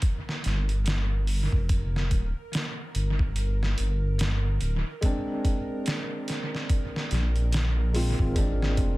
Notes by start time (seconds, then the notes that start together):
Already playing: A#4
0.02 kick, closed hi-hat
0.29 snare
0.44 G1, snare, closed hi-hat
0.69 closed hi-hat
0.86 snare, closed hi-hat
1.27 open hi-hat
1.52 F1, kick
1.69 kick, closed hi-hat
1.96 snare
2.11 D1, kick, closed hi-hat
2.53 snare, closed hi-hat
2.95 G1, closed hi-hat
3.19 kick
3.36 closed hi-hat
3.63 snare
3.78 G1, closed hi-hat
4.19 snare, closed hi-hat
4.61 D1, closed hi-hat
5.01 G#3 C4, kick, closed hi-hat
5.05 D4
5.45 kick, closed hi-hat
5.86 snare, closed hi-hat
6.28 snare, closed hi-hat
6.55 snare
6.70 kick, closed hi-hat
6.96 snare
7.11 A#1, snare, closed hi-hat
7.36 closed hi-hat
7.53 snare, closed hi-hat
7.94 G#3 C4 F4, open hi-hat
8.19 G#1, kick
8.34 G#3 C4 D4, kick, closed hi-hat
8.62 snare
8.77 F1, kick, closed hi-hat